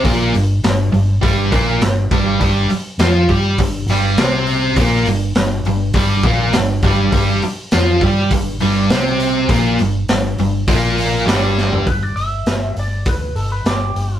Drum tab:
HH |o-o-o-o-o-o-o-o-|o-o-o-o-o-o-o-o-|o-o-o-o-o-o-o-o-|o-o-o-o-o-o-o-o-|
SD |----o-------o---|----o-------o---|----o-------o---|----o-------o---|
FT |----------------|----------------|----------------|----------------|
BD |o-------o-o---o-|o-----o-o-------|o-------o-o---o-|o-----o-o-------|

HH |o-o-o-o-o-o-o---|o-o-o-o-o-o-o-o-|
SD |----o-------o-o-|----o-------o---|
FT |---------------o|----------------|
BD |o-------o-------|o-------o-------|